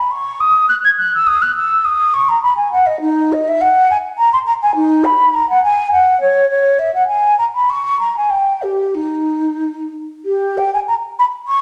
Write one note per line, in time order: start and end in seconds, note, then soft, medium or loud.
0.00 0.13 B5 medium
0.11 0.42 C#6 medium
0.40 0.68 D#6 medium
0.69 0.75 F#6 medium
0.84 0.90 G#6 medium
0.98 1.12 F#6 medium
1.15 1.28 E6 medium
1.27 1.43 D#6 medium
1.42 1.55 F#6 medium
1.56 1.86 E6 medium
1.85 2.15 D#6 medium
2.14 2.30 C#6 medium
2.29 2.42 A#5 medium
2.43 2.56 B5 medium
2.57 2.71 G#5 medium
2.72 2.88 F#5 medium
2.86 3.00 D#5 medium
3.01 3.34 D#4 medium
3.33 3.50 D#5 medium
3.48 3.63 E5 medium
3.61 3.89 F#5 medium
3.91 3.97 G#5 medium
4.18 4.32 A#5 loud
4.33 4.39 C6 medium
4.46 4.52 A#5 medium
4.63 4.75 G#5 medium
4.75 5.06 D#4 medium
5.05 5.36 B5 medium
5.34 5.48 A#5 medium
5.50 5.63 F#5 medium
5.64 5.91 G#5 medium
5.92 6.20 F#5 medium
6.21 6.49 C#5 medium
6.49 6.81 C#5 medium
6.79 6.94 E5 medium
6.94 7.07 F#5 medium
7.07 7.37 G#5 medium
7.39 7.45 A#5 medium
7.55 7.71 B5 medium
7.70 7.99 C#6 medium
8.00 8.15 A#5 medium
8.17 8.32 G#5 medium
8.30 8.64 G5 medium
8.63 8.96 G4 medium
8.95 9.91 D#4 medium
10.25 10.59 G4 medium
10.58 10.73 G5 medium
10.74 10.80 G#5 medium
10.88 10.95 A#5 medium
11.19 11.25 B5 medium
11.48 11.62 C#6 medium